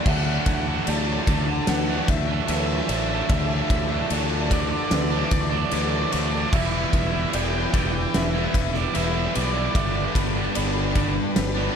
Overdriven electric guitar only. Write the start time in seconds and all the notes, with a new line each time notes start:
0.09 F#5
0.17 F#5
0.24 F#5
0.32 F#5
0.39 F#5
0.46 F#5
0.54 F#5
0.62 F#5
0.68 F#5
0.76 F#5
0.83 F#5
0.90 A5
0.97 A5
1.04 A5
1.13 A5
1.19 A5
1.27 A5
1.35 A5
1.42 A5
1.50 A5
1.57 A5
1.64 A5
1.69 F#5
1.77 F#5
1.86 F#5
1.95 F#5
2.03 F#5
2.10 E5
2.18 E5
2.26 E5
2.33 E5
2.41 E5
2.51 E5
2.57 E5
2.66 E5
2.74 E5
2.81 E5
2.89 E5
2.98 E5
3.06 E5
3.14 E5
3.21 E5
3.31 E5
3.38 E5
3.46 E5
3.54 E5
3.62 E5
3.69 E5
3.77 E5
3.85 E5
3.91 E5
3.99 E5
4.53 D5
4.61 D5
4.69 D5
4.78 D5
4.84 D5
4.94 D5
5.02 D5
5.10 D5
5.18 D5
5.25 D5
5.33 D5
5.41 D5
5.50 D5
5.57 D5
5.65 D5
5.75 D5
5.82 D5
5.90 D5
5.97 D5
6.04 D5
6.12 D5
6.19 D5
6.27 D5
6.35 D5
6.41 D5
6.49 D5
6.54 E5
6.63 E5
6.70 E5
6.77 E5
6.84 E5
6.90 E5
6.99 E5
7.07 E5
7.15 E5
7.21 E5
7.30 E5
7.35 G5
7.43 G5
7.50 G5
7.58 G5
7.65 G5
7.74 G5
7.80 G5
7.87 G5
7.95 G5
8.02 G5
8.10 G5
8.16 E5
8.23 E5
8.30 E5
8.38 E5
8.45 E5
8.55 E5
8.62 E5
8.70 E5
8.77 D5
8.95 E5
9.03 E5
9.12 E5
9.19 E5
9.28 E5
9.35 D5
9.42 D5
9.51 D5
9.58 D5
9.65 D5
9.73 D5
9.80 D5
9.89 D5
9.96 D5
10.05 D5